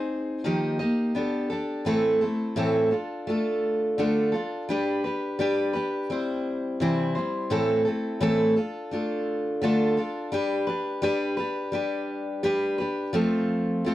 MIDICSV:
0, 0, Header, 1, 2, 480
1, 0, Start_track
1, 0, Tempo, 705053
1, 1268, Time_signature, 4, 2, 24, 8
1, 9494, End_track
2, 0, Start_track
2, 0, Title_t, "Steel-string acoustic guitar"
2, 0, Program_c, 0, 25
2, 0, Note_on_c, 0, 60, 57
2, 0, Note_on_c, 0, 63, 63
2, 0, Note_on_c, 0, 68, 65
2, 0, Note_on_c, 0, 72, 73
2, 301, Note_off_c, 0, 63, 0
2, 301, Note_on_c, 0, 51, 75
2, 302, Note_off_c, 0, 60, 0
2, 304, Note_on_c, 0, 53, 68
2, 307, Note_on_c, 0, 58, 63
2, 309, Note_off_c, 0, 68, 0
2, 309, Note_on_c, 0, 63, 71
2, 310, Note_off_c, 0, 72, 0
2, 313, Note_on_c, 0, 75, 82
2, 314, Note_on_c, 0, 67, 79
2, 531, Note_off_c, 0, 75, 0
2, 537, Note_off_c, 0, 67, 0
2, 539, Note_on_c, 0, 75, 58
2, 542, Note_off_c, 0, 63, 0
2, 544, Note_off_c, 0, 51, 0
2, 545, Note_on_c, 0, 67, 51
2, 546, Note_off_c, 0, 53, 0
2, 547, Note_off_c, 0, 58, 0
2, 550, Note_on_c, 0, 63, 47
2, 560, Note_on_c, 0, 58, 47
2, 778, Note_off_c, 0, 58, 0
2, 781, Note_on_c, 0, 59, 55
2, 783, Note_off_c, 0, 75, 0
2, 785, Note_off_c, 0, 63, 0
2, 787, Note_off_c, 0, 67, 0
2, 788, Note_on_c, 0, 62, 63
2, 794, Note_on_c, 0, 67, 67
2, 801, Note_on_c, 0, 69, 60
2, 1011, Note_off_c, 0, 69, 0
2, 1019, Note_on_c, 0, 69, 56
2, 1024, Note_off_c, 0, 67, 0
2, 1025, Note_off_c, 0, 59, 0
2, 1028, Note_off_c, 0, 62, 0
2, 1032, Note_on_c, 0, 67, 44
2, 1039, Note_on_c, 0, 62, 45
2, 1259, Note_on_c, 0, 45, 66
2, 1264, Note_off_c, 0, 69, 0
2, 1266, Note_on_c, 0, 52, 74
2, 1267, Note_off_c, 0, 62, 0
2, 1267, Note_on_c, 0, 57, 85
2, 1268, Note_off_c, 0, 67, 0
2, 1270, Note_on_c, 0, 60, 76
2, 1271, Note_on_c, 0, 64, 79
2, 1273, Note_on_c, 0, 69, 85
2, 1495, Note_off_c, 0, 69, 0
2, 1501, Note_off_c, 0, 64, 0
2, 1504, Note_off_c, 0, 45, 0
2, 1504, Note_on_c, 0, 69, 49
2, 1507, Note_off_c, 0, 60, 0
2, 1508, Note_off_c, 0, 52, 0
2, 1508, Note_off_c, 0, 57, 0
2, 1509, Note_on_c, 0, 64, 47
2, 1516, Note_on_c, 0, 60, 44
2, 1522, Note_on_c, 0, 57, 45
2, 1738, Note_off_c, 0, 57, 0
2, 1742, Note_on_c, 0, 45, 81
2, 1742, Note_on_c, 0, 52, 82
2, 1743, Note_off_c, 0, 64, 0
2, 1745, Note_off_c, 0, 60, 0
2, 1747, Note_off_c, 0, 69, 0
2, 1747, Note_on_c, 0, 57, 91
2, 1751, Note_on_c, 0, 64, 90
2, 1753, Note_on_c, 0, 60, 92
2, 1757, Note_on_c, 0, 69, 86
2, 1972, Note_off_c, 0, 69, 0
2, 1980, Note_on_c, 0, 69, 51
2, 1986, Note_off_c, 0, 45, 0
2, 1986, Note_off_c, 0, 52, 0
2, 1986, Note_off_c, 0, 64, 0
2, 1988, Note_off_c, 0, 57, 0
2, 1988, Note_on_c, 0, 65, 54
2, 1992, Note_off_c, 0, 60, 0
2, 1999, Note_on_c, 0, 62, 44
2, 2225, Note_off_c, 0, 69, 0
2, 2226, Note_on_c, 0, 57, 63
2, 2229, Note_off_c, 0, 62, 0
2, 2229, Note_off_c, 0, 65, 0
2, 2237, Note_on_c, 0, 62, 53
2, 2240, Note_on_c, 0, 65, 62
2, 2247, Note_on_c, 0, 69, 65
2, 2707, Note_off_c, 0, 57, 0
2, 2710, Note_off_c, 0, 62, 0
2, 2710, Note_on_c, 0, 50, 82
2, 2713, Note_off_c, 0, 65, 0
2, 2715, Note_off_c, 0, 69, 0
2, 2716, Note_on_c, 0, 57, 77
2, 2718, Note_on_c, 0, 62, 74
2, 2721, Note_on_c, 0, 65, 73
2, 2723, Note_on_c, 0, 69, 82
2, 2933, Note_off_c, 0, 69, 0
2, 2941, Note_on_c, 0, 69, 54
2, 2945, Note_off_c, 0, 65, 0
2, 2950, Note_off_c, 0, 50, 0
2, 2953, Note_off_c, 0, 57, 0
2, 2953, Note_on_c, 0, 65, 49
2, 2955, Note_off_c, 0, 62, 0
2, 2965, Note_on_c, 0, 62, 45
2, 3186, Note_off_c, 0, 69, 0
2, 3191, Note_off_c, 0, 62, 0
2, 3191, Note_on_c, 0, 55, 71
2, 3192, Note_off_c, 0, 65, 0
2, 3199, Note_on_c, 0, 62, 81
2, 3202, Note_on_c, 0, 67, 78
2, 3208, Note_on_c, 0, 71, 83
2, 3423, Note_off_c, 0, 71, 0
2, 3431, Note_off_c, 0, 55, 0
2, 3431, Note_on_c, 0, 71, 54
2, 3435, Note_off_c, 0, 62, 0
2, 3435, Note_off_c, 0, 67, 0
2, 3443, Note_on_c, 0, 67, 44
2, 3451, Note_on_c, 0, 62, 45
2, 3667, Note_off_c, 0, 62, 0
2, 3668, Note_on_c, 0, 55, 74
2, 3672, Note_off_c, 0, 71, 0
2, 3673, Note_off_c, 0, 67, 0
2, 3675, Note_on_c, 0, 62, 87
2, 3681, Note_on_c, 0, 67, 97
2, 3686, Note_on_c, 0, 71, 92
2, 3895, Note_off_c, 0, 71, 0
2, 3903, Note_on_c, 0, 71, 60
2, 3909, Note_off_c, 0, 67, 0
2, 3910, Note_off_c, 0, 55, 0
2, 3914, Note_off_c, 0, 62, 0
2, 3917, Note_on_c, 0, 67, 56
2, 3926, Note_on_c, 0, 62, 46
2, 4148, Note_off_c, 0, 71, 0
2, 4151, Note_on_c, 0, 55, 68
2, 4152, Note_off_c, 0, 62, 0
2, 4155, Note_off_c, 0, 67, 0
2, 4155, Note_on_c, 0, 60, 60
2, 4165, Note_on_c, 0, 64, 62
2, 4168, Note_on_c, 0, 72, 62
2, 4630, Note_on_c, 0, 48, 83
2, 4632, Note_off_c, 0, 55, 0
2, 4634, Note_off_c, 0, 60, 0
2, 4635, Note_off_c, 0, 64, 0
2, 4639, Note_off_c, 0, 72, 0
2, 4639, Note_on_c, 0, 52, 85
2, 4640, Note_on_c, 0, 55, 79
2, 4643, Note_on_c, 0, 60, 80
2, 4643, Note_on_c, 0, 64, 98
2, 4647, Note_on_c, 0, 72, 84
2, 4860, Note_off_c, 0, 72, 0
2, 4868, Note_on_c, 0, 72, 54
2, 4871, Note_off_c, 0, 48, 0
2, 4871, Note_off_c, 0, 64, 0
2, 4876, Note_off_c, 0, 52, 0
2, 4876, Note_off_c, 0, 55, 0
2, 4878, Note_off_c, 0, 60, 0
2, 4879, Note_on_c, 0, 64, 50
2, 4888, Note_on_c, 0, 60, 43
2, 4894, Note_on_c, 0, 55, 48
2, 5106, Note_on_c, 0, 45, 82
2, 5107, Note_off_c, 0, 60, 0
2, 5107, Note_off_c, 0, 64, 0
2, 5109, Note_on_c, 0, 52, 88
2, 5110, Note_off_c, 0, 72, 0
2, 5111, Note_off_c, 0, 55, 0
2, 5113, Note_on_c, 0, 57, 83
2, 5115, Note_on_c, 0, 60, 81
2, 5116, Note_on_c, 0, 64, 91
2, 5120, Note_on_c, 0, 69, 85
2, 5335, Note_off_c, 0, 69, 0
2, 5343, Note_on_c, 0, 69, 49
2, 5345, Note_off_c, 0, 64, 0
2, 5350, Note_off_c, 0, 45, 0
2, 5351, Note_off_c, 0, 52, 0
2, 5351, Note_off_c, 0, 60, 0
2, 5353, Note_off_c, 0, 57, 0
2, 5353, Note_on_c, 0, 64, 50
2, 5359, Note_on_c, 0, 60, 50
2, 5365, Note_on_c, 0, 57, 43
2, 5583, Note_off_c, 0, 57, 0
2, 5586, Note_on_c, 0, 45, 96
2, 5587, Note_on_c, 0, 52, 86
2, 5588, Note_off_c, 0, 60, 0
2, 5588, Note_off_c, 0, 69, 0
2, 5592, Note_on_c, 0, 57, 91
2, 5593, Note_off_c, 0, 64, 0
2, 5596, Note_on_c, 0, 60, 85
2, 5601, Note_on_c, 0, 64, 88
2, 5601, Note_on_c, 0, 69, 100
2, 5821, Note_off_c, 0, 69, 0
2, 5829, Note_off_c, 0, 45, 0
2, 5830, Note_off_c, 0, 52, 0
2, 5830, Note_on_c, 0, 69, 61
2, 5832, Note_off_c, 0, 57, 0
2, 5834, Note_off_c, 0, 60, 0
2, 5837, Note_off_c, 0, 64, 0
2, 5840, Note_on_c, 0, 65, 54
2, 5849, Note_on_c, 0, 62, 43
2, 6068, Note_off_c, 0, 62, 0
2, 6068, Note_on_c, 0, 57, 64
2, 6071, Note_off_c, 0, 69, 0
2, 6073, Note_off_c, 0, 65, 0
2, 6076, Note_on_c, 0, 62, 64
2, 6081, Note_on_c, 0, 65, 66
2, 6090, Note_on_c, 0, 69, 61
2, 6546, Note_off_c, 0, 57, 0
2, 6546, Note_on_c, 0, 50, 81
2, 6551, Note_off_c, 0, 62, 0
2, 6553, Note_off_c, 0, 65, 0
2, 6554, Note_on_c, 0, 57, 84
2, 6556, Note_off_c, 0, 69, 0
2, 6559, Note_on_c, 0, 62, 81
2, 6561, Note_on_c, 0, 65, 86
2, 6565, Note_on_c, 0, 69, 93
2, 6779, Note_off_c, 0, 69, 0
2, 6788, Note_on_c, 0, 69, 53
2, 6789, Note_off_c, 0, 50, 0
2, 6789, Note_off_c, 0, 65, 0
2, 6793, Note_off_c, 0, 57, 0
2, 6796, Note_off_c, 0, 62, 0
2, 6798, Note_on_c, 0, 65, 49
2, 6807, Note_on_c, 0, 62, 44
2, 7022, Note_off_c, 0, 62, 0
2, 7025, Note_on_c, 0, 55, 88
2, 7030, Note_off_c, 0, 69, 0
2, 7030, Note_on_c, 0, 62, 83
2, 7035, Note_off_c, 0, 65, 0
2, 7038, Note_on_c, 0, 67, 94
2, 7039, Note_on_c, 0, 71, 93
2, 7255, Note_off_c, 0, 71, 0
2, 7263, Note_on_c, 0, 71, 63
2, 7267, Note_off_c, 0, 67, 0
2, 7268, Note_off_c, 0, 55, 0
2, 7271, Note_off_c, 0, 62, 0
2, 7275, Note_on_c, 0, 67, 50
2, 7283, Note_on_c, 0, 62, 43
2, 7501, Note_off_c, 0, 62, 0
2, 7501, Note_on_c, 0, 55, 93
2, 7502, Note_off_c, 0, 67, 0
2, 7508, Note_off_c, 0, 71, 0
2, 7510, Note_on_c, 0, 62, 93
2, 7510, Note_on_c, 0, 67, 93
2, 7516, Note_on_c, 0, 71, 106
2, 7731, Note_off_c, 0, 71, 0
2, 7740, Note_on_c, 0, 71, 65
2, 7742, Note_off_c, 0, 67, 0
2, 7747, Note_off_c, 0, 55, 0
2, 7750, Note_on_c, 0, 67, 60
2, 7751, Note_off_c, 0, 62, 0
2, 7761, Note_on_c, 0, 62, 52
2, 7977, Note_on_c, 0, 55, 62
2, 7978, Note_off_c, 0, 62, 0
2, 7984, Note_off_c, 0, 67, 0
2, 7986, Note_off_c, 0, 71, 0
2, 7987, Note_on_c, 0, 62, 70
2, 7992, Note_on_c, 0, 67, 73
2, 7997, Note_on_c, 0, 71, 73
2, 8455, Note_off_c, 0, 55, 0
2, 8459, Note_off_c, 0, 62, 0
2, 8463, Note_on_c, 0, 55, 75
2, 8465, Note_off_c, 0, 67, 0
2, 8467, Note_on_c, 0, 62, 93
2, 8471, Note_off_c, 0, 71, 0
2, 8473, Note_on_c, 0, 67, 86
2, 8479, Note_on_c, 0, 71, 91
2, 8693, Note_off_c, 0, 71, 0
2, 8702, Note_on_c, 0, 71, 61
2, 8707, Note_off_c, 0, 55, 0
2, 8707, Note_off_c, 0, 67, 0
2, 8709, Note_off_c, 0, 62, 0
2, 8716, Note_on_c, 0, 67, 47
2, 8724, Note_on_c, 0, 62, 50
2, 8938, Note_on_c, 0, 53, 84
2, 8942, Note_off_c, 0, 62, 0
2, 8943, Note_off_c, 0, 67, 0
2, 8944, Note_on_c, 0, 57, 96
2, 8945, Note_on_c, 0, 60, 86
2, 8946, Note_off_c, 0, 71, 0
2, 8946, Note_on_c, 0, 65, 90
2, 8954, Note_on_c, 0, 69, 88
2, 9418, Note_off_c, 0, 57, 0
2, 9424, Note_off_c, 0, 53, 0
2, 9426, Note_on_c, 0, 57, 65
2, 9427, Note_off_c, 0, 60, 0
2, 9428, Note_off_c, 0, 65, 0
2, 9432, Note_off_c, 0, 69, 0
2, 9437, Note_on_c, 0, 60, 73
2, 9440, Note_on_c, 0, 65, 78
2, 9448, Note_on_c, 0, 69, 85
2, 9494, Note_off_c, 0, 57, 0
2, 9494, Note_off_c, 0, 60, 0
2, 9494, Note_off_c, 0, 65, 0
2, 9494, Note_off_c, 0, 69, 0
2, 9494, End_track
0, 0, End_of_file